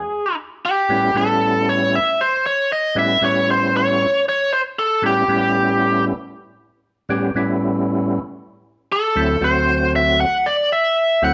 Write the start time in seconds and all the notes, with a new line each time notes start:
Already playing: G#4
0.65 G4
0.89 A2 G3 B3 C#4 E4
1.14 A2 G3 B3 C#4 E4 A4
1.69 C#5
1.95 E5
2.21 C5
2.46 C#5
2.72 D#5
2.95 A2 G3 B3 C#4 E4 E5
3.21 A2 G3 B3 C#4 E4 C#5
3.51 C5
3.77 C#5
4.29 C#5
4.53 C5
4.79 A4
5.02 A2 G3 B3 C#4 E4
5.06 G4
5.28 A2 G3 B3 C#4 E4
7.09 A2 G3 B3 C#4 G4
7.35 A2 G3 B3 C#4 E4
8.92 A4
9.15 D2 F#3 A3 C4 E4
9.41 D2 F#3 A3 C4 F#4 C5
9.96 E5
10.21 F#5
10.46 D5
10.72 E5
11.22 D2 F#3 A3 C4 E4 F#5